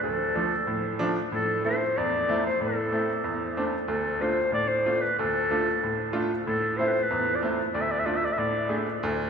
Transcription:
0.03 D2 A4
0.35 F3 A3 D4
0.67 A2
0.99 F3 A3 D4
1.32 A2 A4
1.64 A3 C4 E4 C5
1.97 E2 D5
2.29 A3 C4 E4
2.45 C5
2.61 A2 A4
2.92 A3 C4 E4
3.24 E2
3.57 A3 C4 D4
3.88 D2 A4
4.21 A3 D4 F4 C5
4.52 A2 D5
4.68 C5
4.86 A3 D4 F4
5.01 B4
5.19 D2 A4
5.51 A3 D4 F4
5.84 A2
6.13 A3 D4 F4
6.47 A2 A4
6.78 A3 C4 E4 C5
6.87 B4 C5
7.03 B4
7.11 E2
7.36 D5
7.42 A3 C4 E4
7.74 D2 D5
7.81 E5
7.91 D5
7.99 E5
8.06 A3 D4 F4 D5
8.16 E5
8.25 D5
8.33 E5
8.38 A2 D5
8.69 A3 D4 G#4
9.03 D2

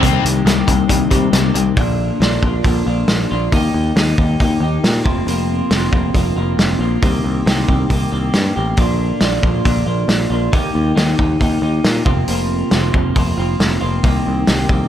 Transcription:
0.02 C2 C3 D#3 G3 A#3 C4 G4, kick, closed hi-hat
0.24 C2 C3 G3 A#3 C4 G4, closed hi-hat
0.45 C2 C3 D#3 G3 A#3 C4 G4, snare, closed hi-hat
0.67 C2 C3 G3, kick, closed hi-hat
0.89 C2 C3 G3, kick, closed hi-hat
1.11 C3 G3 A#3 C4 G4, kick, closed hi-hat
1.33 C2 C3 D#3 G3 A#3 C4 G4, snare, closed hi-hat
1.54 C2 C3 G3 A#3 C4 G4, closed hi-hat
1.77 A#1 A#2 D3 A#3 D4 F4, kick, open hi-hat
2.20 A#1 A#2 D3 A#3 D4 F4, snare, open hi-hat
2.42 A#1 A#3 D4 F4, kick
2.64 A#1 D3 A#3 D4 F4, kick, open hi-hat
2.86 A#1 A#3 D4 F4
3.08 A#1, snare, open hi-hat
3.31 A#1 A#3 D4 F4
3.52 D#2 D#3 A#3 D#4 G4, kick, open hi-hat
3.74 D#2
3.96 D#2 D#3 A#3 D#4 G4, snare, open hi-hat
4.18 D#2 A#3 D#4 G4, kick
4.40 D#2 D#3 A#3 D#4 G4, kick, open hi-hat
4.60 D#2 A#3 D#4 G4
4.84 A#2, snare, open hi-hat
5.04 F1 F2 C3 F3 A#3 C4 F4, kick
5.27 F1 F2 C3 F3 A#3 C4 F4, open hi-hat
5.70 F1 F2 C3 F3 A#3 C4 F4, snare, open hi-hat
5.92 F1 F3 A#3 C4 F4, kick
6.14 F1 F3 A#3 C4 F4, kick, open hi-hat
6.36 F1 F3 A#3 C4 F4
6.57 F1, snare, open hi-hat
6.79 A#1 F3 A#3 C4 F4
7.02 C2 C3 D#3 A#3 C4 G4, kick, open hi-hat
7.24 C2
7.46 C2 C3 D#3 A#3 C4 G4, snare, open hi-hat
7.68 C2 A#3 C4 G4, kick
7.90 C2 D#3 A#3 C4 G4, kick, open hi-hat
8.11 C2 A#3 C4 G4
8.34 G2, snare, open hi-hat
8.56 A1 A#3 C4 G4
8.77 A#1 A#2 D3 A#3 D4 F4, kick, open hi-hat
9.20 A#1 A#2 D3 A#3 D4 F4, snare, open hi-hat
9.43 A#1 A#3 D4 F4, kick
9.65 A#1 D3 A#3 D4 F4, kick, open hi-hat
9.86 A#1 A#3 D4 F4
10.08 A#1, snare, open hi-hat
10.30 A#1 A#3 D4 F4
10.52 D#2 D#3 A#3 D#4 G4, kick, open hi-hat
10.75 D#2
10.95 D#2 D#3 A#3 D#4 G4, snare, open hi-hat
11.17 D#2 A#3 D#4 G4, kick
11.40 D#2 D#3 A#3 D#4 G4, kick, open hi-hat
11.62 D#2 A#3 D#4 G4
11.84 A#2, snare, open hi-hat
12.05 F1 F2 C3 F3 A#3 C4 F4, kick
12.27 F1 F2 C3 F3 A#3 C4 F4, open hi-hat
12.71 F1 F2 C3 F3 A#3 C4 F4, snare, open hi-hat
12.93 F1 F3 A#3 C4 F4, kick
13.15 F1 F3 A#3 C4 F4, kick, open hi-hat
13.37 F1 F3 A#3 C4 F4
13.60 F1, snare, open hi-hat
13.81 F1 F3 A#3 C4 F4
14.03 C2 C3 D#3 A#3 C4 G4, kick, open hi-hat
14.27 C2
14.47 C2 C3 D#3 A#3 C4 G4, snare, open hi-hat
14.69 C2 A#3 C4 G4, kick

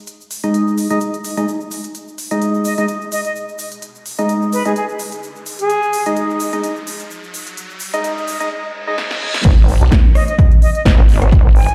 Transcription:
0.07 closed hi-hat, shaker
0.21 shaker
0.31 open hi-hat, shaker
0.43 G#3 D#4 D#5, closed hi-hat, shaker
0.54 closed hi-hat, shaker
0.67 shaker
0.78 open hi-hat, shaker
0.90 G#3 D#4 D#5, closed hi-hat, shaker
1.00 closed hi-hat, shaker
1.14 closed hi-hat, shaker
1.24 open hi-hat, shaker
1.37 G#3 D#4 D#5, closed hi-hat, shaker
1.48 shaker
1.60 shaker
1.71 open hi-hat, shaker
1.84 closed hi-hat, shaker
1.95 closed hi-hat, riser, shaker
2.08 shaker
2.18 open hi-hat, shaker
2.31 G#3 D#4 D#5, closed hi-hat, shaker
2.42 closed hi-hat, shaker
2.54 shaker
2.65 D#5, open hi-hat, shaker
2.78 G#3 D#4 D#5, closed hi-hat, shaker
2.88 closed hi-hat, shaker
3.02 shaker
3.12 D#5, open hi-hat, shaker
3.25 D#5, closed hi-hat, shaker
3.36 shaker
3.49 shaker
3.59 open hi-hat, shaker
3.72 closed hi-hat, shaker
3.82 closed hi-hat, shaker
3.95 shaker
4.06 open hi-hat, shaker
4.19 G#3 D#4 D#5, closed hi-hat, shaker
4.29 closed hi-hat, shaker
4.42 shaker
4.53 B4, open hi-hat, shaker
4.65 G#3 D#4 G#4 D#5, closed hi-hat, shaker
4.76 G#4, closed hi-hat, shaker
4.89 shaker
4.99 open hi-hat, shaker
5.12 closed hi-hat, shaker
5.23 shaker
5.36 shaker
5.46 open hi-hat, shaker
5.59 G#4, closed hi-hat, shaker
5.70 closed hi-hat, shaker
5.82 shaker
5.93 open hi-hat, shaker
6.06 G#3 D#4 D#5, closed hi-hat, shaker
6.16 closed hi-hat, shaker
6.30 shaker
6.40 open hi-hat, shaker
6.53 G#3 D#4 D#5, closed hi-hat, shaker
6.64 closed hi-hat, shaker
6.76 shaker
6.87 open hi-hat, shaker
7.00 closed hi-hat, shaker
7.11 shaker
7.24 shaker
7.34 open hi-hat, shaker
7.47 closed hi-hat, shaker
7.57 closed hi-hat, shaker
7.70 shaker
7.80 open hi-hat, shaker
7.94 G#3 D#4 D#5, closed hi-hat, shaker
8.04 closed hi-hat, shaker
8.18 shaker
8.28 open hi-hat, shaker
8.40 G#3 D#4 D#5, closed hi-hat, shaker
8.51 reverse cymbal
8.87 G#3 D#4 D#5
8.98 snare
9.11 snare
9.34 snare
9.45 G#1, kick, closed hi-hat, crash
9.68 open hi-hat
9.81 B1, closed hi-hat
9.92 kick, snare, closed hi-hat
10.15 D#5, cross-stick, open hi-hat
10.28 D#5, closed hi-hat
10.39 kick, closed hi-hat
10.52 closed hi-hat
10.62 D#5, open hi-hat
10.75 D#5, closed hi-hat
10.85 G#1, kick, snare
10.98 G#1
11.09 open hi-hat
11.22 G#1, cross-stick, closed hi-hat
11.32 kick, closed hi-hat
11.45 G#1
11.56 G#5, open hi-hat
11.69 closed hi-hat

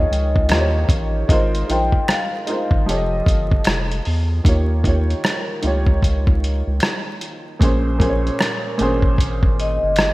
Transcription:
Already playing: D#3 D#4 F4 G#4 C#5 D#5
0.11 C#2, closed hi-hat
0.36 kick
0.49 D#2 D#3 D#4 F4 G4, finger snap, cross-stick, closed hi-hat
0.54 C5
0.60 C#5
0.89 A1, kick, closed hi-hat
1.28 G#1 G#3 D#4 F4 A#4, kick, closed hi-hat
1.33 C5
1.55 closed hi-hat
1.67 A#1 G#3 D#4 F4 A#4 G5, closed hi-hat
1.72 C5
1.92 kick
2.08 F5, finger snap, cross-stick, closed hi-hat
2.47 G#3 D#4 F4 A#4, closed hi-hat
2.51 C5
2.71 G#1, kick
2.86 F1 F3 F4 G4 A4 D#5, closed hi-hat
2.90 C#5
2.97 D#5
3.26 G1, kick, closed hi-hat
3.51 kick
3.64 F1, finger snap, cross-stick, closed hi-hat
3.92 closed hi-hat
4.05 E2, open hi-hat
4.44 D#2 D#3 A#3 F4 G4, kick, closed hi-hat
4.49 C#5
4.83 D#3 A#3 F4 G4, kick, closed hi-hat
4.88 C#5
5.10 closed hi-hat
5.24 finger snap, cross-stick, closed hi-hat
5.62 C#2 D#3 A#3 F4 G4, closed hi-hat
5.67 C#5
5.87 kick
6.03 kick, closed hi-hat
6.27 kick
6.44 closed hi-hat
6.67 C#2
6.80 finger snap, cross-stick, closed hi-hat
7.21 closed hi-hat
7.59 A#1 A#2 A#3 C#4 G#4, kick, closed hi-hat
7.64 C5
7.99 A#2 A#3 C#4 G#4, kick, closed hi-hat
8.03 C5
8.10 C#5
8.27 closed hi-hat
8.39 finger snap, cross-stick, closed hi-hat
8.77 G#1 A#2 A#3 C#4 G#4, closed hi-hat
8.82 C5
9.02 kick
9.18 kick, closed hi-hat
9.43 kick
9.60 D#5, closed hi-hat
9.83 G1
9.96 finger snap, cross-stick, closed hi-hat

